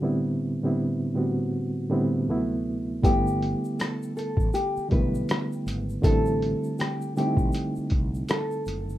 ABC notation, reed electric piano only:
X:1
M:4/4
L:1/16
Q:"Swing 16ths" 1/4=80
K:G
V:1 name="Reed electric piano"
[A,,D,G,B,CE]3 [A,,D,G,B,CE]3 [A,,D,G,B,CF]4 [A,,D,G,B,CE]2 [D,,C,=F,^F,A,B,E]4 | [D,G,A,B,E]6- [D,G,A,B,E] z3 [D,G,A,B,E]4- [D,G,A,B,E] z | [D,G,A,CE]4- [D,G,A,CE] z [D,G,A,C_E=E]6- [D,G,A,C_E=E] z3 |]